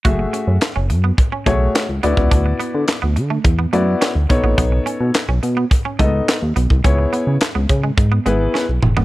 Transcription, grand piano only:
\new Staff \with { instrumentName = "Grand piano" } { \time 4/4 \key fis \minor \tempo 4 = 106 <a fis' gis' e''>4 r4. <a fis' gis' cis''>8 r8 <b e' fis' d''>8~ | <b e' fis' d''>4 r4. <b e' fis' d''>8 r8 <b dis' a' cis''>8~ | <b dis' a' cis''>4 r4. <b dis' a' dis''>8 r4 | <b e' gis' cis''>4 r4. <b e' gis' b'>8 r4 | }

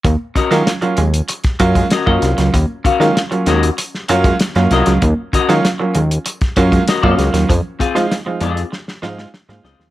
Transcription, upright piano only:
\new Staff \with { instrumentName = "Upright piano" } { \time 4/4 \key ees \dorian \tempo 4 = 97 r8. <ges bes des' f'>16 r16 <ges bes des' f'>16 r16 <des' f'>16 r8 <ges bes des' f'>8 r16 <ges bes des' f'>8. | r8. <ges bes des' f'>16 r16 <ges bes des' f'>16 r16 <des' f'>16 r8 <ges bes des' f'>8 r16 <ges bes des' f'>8. | r8. <ges bes des' f'>16 r16 <ges bes des' f'>16 r16 <des' f'>16 r8 <ges bes des' f'>8 r16 <ges bes des' f'>8. | r8. <aes c' ees' f'>16 r16 <aes c' ees' f'>16 r16 <ees' f'>16 r8 <aes c' ees' f'>8 r16 <aes c' ees' f'>8. | }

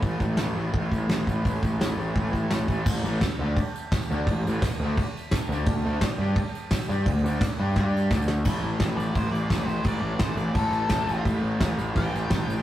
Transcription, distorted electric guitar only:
\new Staff \with { instrumentName = "Distorted electric guitar" } { \clef bass \time 4/4 \key d \dorian \tempo 4 = 171 <a, e a>8 <e a>8 <a, e a>8 <e a>8 <a, e a>8 <e a>4 <e a>8 | <a, e a>8 <e a>8 <a, e a>8 <e a>8 <a, e a>8 <e a>4 <e a>8 | <a, e>8 <a, e a>8 r8 <d a d'>8 r4. <d a d'>8 | <a, e>8 <a, e a>8 r8 <d a d'>8 r4. <d a d'>8 |
<d a>8 <d a d'>8 r8 <g d' g'>8 r4. <g d' g'>8 | <d a>8 <d a d'>8 r8 <g d' g'>8 <g d' g'>4 <d a d'>4 | <a, e a>4 <a, e a>4 <a, e a>8 <e a>8 <a, e a>8 <e a>8 | <a, e a>4 <a, e a>4 <a, e a>8 <e a>8 <a, e a>8 <e a>8 |
<a, e a>4 <a, e a>4 <a, e a>8 <e a>8 <a, e a>8 <e a>8 | }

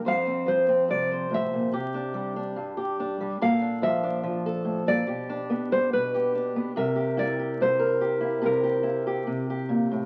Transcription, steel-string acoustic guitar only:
\new Staff \with { instrumentName = "Steel-string acoustic guitar" } { \time 4/4 \key c \mixolydian \tempo 4 = 72 << { c''16 c'8 c'8 c''8. g'16 d'8 d'8 g'16 d'8 | a'16 d'8 d'8 a'8. g'16 d'8 d'8 g'16 d'8 | bes'16 g'8 g'8 bes'16 g'8 g'16 g'8 g'8 g'8. | } \\ { f,8 f8 c8 a,16 bes,16 c8 g8 g,8. g16 | bes,8 f8 f8 a,16 bes,16 b,8 b8 b,8. b16 | c8 e'8 c8. e'16 c8 e'8 c8 bes,16 a,16 | } >> }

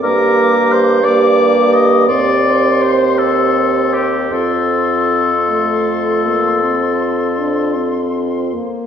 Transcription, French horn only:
\new Staff \with { instrumentName = "French horn" } { \time 12/8 \key f \mixolydian \tempo 4. = 54 bes4. bes4. c'2. | c'4. a4 bes8 c'4 d'8 c'4 bes8 | }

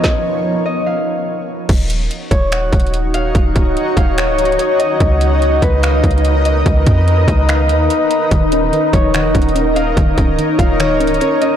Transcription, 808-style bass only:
\new Staff \with { instrumentName = "808-style bass" } { \clef bass \time 4/4 \key ees \minor \tempo 4 = 145 r1 | ees,,4 r8 ees,,4 ees,,4. | ees,,8 des,,8 r8 ees,,8. des,,8. r4 | des,4. des,4 des,4. |
des,8 f,4 des,4 ees,8 r4 | ees,,4 r8 ees,,4 ees,,4. | ees,,8 des,,8 r8 ees,,8. des,,8. r4 | }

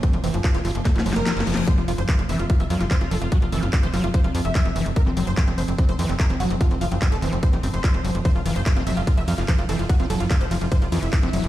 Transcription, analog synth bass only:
\new Staff \with { instrumentName = "Analog synth bass" } { \clef bass \time 4/4 \tempo 4 = 146 r16 f,,16 f,,16 ges,,16 r16 f,,16 f,,16 f,,16 r16 f,,16 f,,16 f,,16 r16 ges,,16 f,,16 f,,16 | r16 f,,16 f,,16 ges,,16 r16 f,,16 f,,16 f,,16 r16 f,,16 f,16 f,,16 r16 f,,16 f,,16 f,,16 | r16 f,,16 f,,16 ges,,16 r16 f,,16 f,,16 f,,16 r16 f,,16 f,16 f,,16 r16 f,,16 f,,16 f,,16 | r16 f,,16 f,,16 ges,,16 r16 f,,16 f,,16 f,,16 r16 f,,16 f,16 f,,16 r16 f,,16 f,,16 f,,16 |
r16 f,,16 f,,16 ges,,16 r16 f,,16 f,,16 f,,16 r16 f,,16 ges,,16 f,,16 r16 f,,16 f,,16 f,,16 | r16 f,,16 f,,16 ges,,16 r16 f,,16 f,,16 f,,16 r16 f,,16 f,16 f,,16 r16 f,,16 f,,16 f,,16 | r16 f,,16 f,,16 ges,,16 r16 f,,16 f,,16 f,,16 r16 f,,16 f,16 f,,16 r16 f,,16 f,,16 f,,16 | }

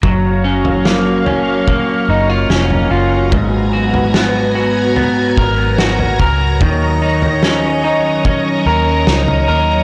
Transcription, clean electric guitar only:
\new Staff \with { instrumentName = "Clean electric guitar" } { \time 4/4 \key fis \major \tempo 4 = 73 fis8 cis'8 ais8 cis'8 ais8 dis'16 eis'16 cis'8 eis'8 | gis,8 fis'8 b8 fis'8 b8 ais'8 fis'8 ais'8 | dis8 dis'8 cis'8 dis'8 cis'8 ais'8 dis'8 ais'8 | }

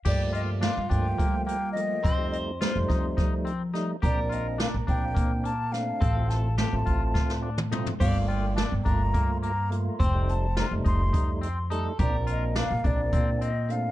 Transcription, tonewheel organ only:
\new Staff \with { instrumentName = "Tonewheel organ" } { \time 7/8 \key f \mixolydian \tempo 4 = 106 <f a bes>4~ <f a bes>16 r16 <f a bes>4~ <f a bes>16 r16 <f a bes>8 | r16 <g a ees'>8 r16 <g a ees'>16 <g a ees'>4~ <g a ees'>16 r8 <g a ees'>8 | <bes c' d'>4~ <bes c' d'>16 r16 <bes c' d'>4~ <bes c' d'>16 r16 <a c' d'>8 | r16 <a c' f'>8 r16 <a c' f'>16 <a c' f'>4~ <a c' f'>16 r8 <a c' f'>8 |
<a bes f'>4~ <a bes f'>16 r16 <a bes f'>4~ <a bes f'>16 r16 <a bes f'>8 | r16 <g a ees'>8 r16 <g a ees'>16 <g a ees'>4~ <g a ees'>16 r8 <g a ees'>8 | <bes c' d'>4~ <bes c' d'>16 r16 <bes c' d'>4~ <bes c' d'>16 r16 <a c' d'>8 | }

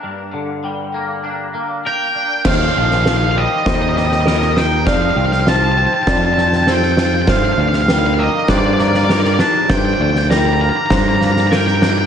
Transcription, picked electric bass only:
\new Staff \with { instrumentName = "Picked electric bass" } { \clef bass \time 4/4 \key g \minor \tempo 4 = 99 r1 | ees,8 bes,,4. ees,2 | f,8 c,4. f,2 | g,8 d,4. g,2 |
g,8 d,4. g,2 | }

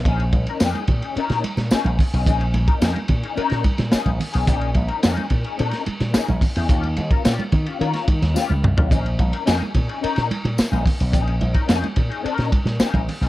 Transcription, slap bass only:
\new Staff \with { instrumentName = "Slap bass" } { \clef bass \time 4/4 \key bes \dorian \tempo 4 = 108 bes,,8 bes,,16 r16 f,16 r16 bes,16 r8 bes,16 r16 bes,16 r16 bes,,16 r16 ces,16 | bes,,8 bes,,16 r16 f,16 r16 bes,16 r8 bes,16 r16 bes,16 r16 bes,,16 r16 ces,16 | bes,,8 bes,,16 r16 f,16 r16 bes,16 r16 bes,16 r8 bes,16 r16 bes,,16 r16 e,16 | ees,8 ees,16 r16 bes,16 r16 ees16 r16 ees16 r16 ees16 ees,16 r16 des,16 c,16 ces,16 |
bes,,8 bes,,16 r16 f,16 r16 bes,16 r8 bes,16 r16 bes,16 r16 bes,,16 r16 ces,16 | bes,,8 bes,,16 r16 f,16 r16 bes,16 r8 bes,16 r16 bes,16 r16 bes,,16 r16 ces,16 | }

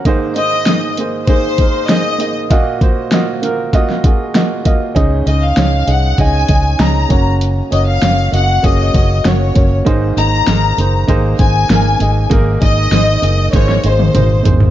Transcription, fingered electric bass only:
\new Staff \with { instrumentName = "Fingered electric bass" } { \clef bass \time 4/4 \key aes \mixolydian \tempo 4 = 98 r1 | r1 | des,8 des,8 des,8 c,8 des,8 des,8 des,8 ges,,8~ | ges,,8 ges,,8 ges,,8 ges,,8 ges,,8 ges,,8 ges,,8 ges,,8 |
aes,,8 aes,,8 aes,,8 ges,,8 aes,,8 aes,,8 aes,,8 aes,,8 | aes,,8 aes,,8 aes,,8 ges,,8 aes,,8 aes,,8 aes,,8 aes,,8 | }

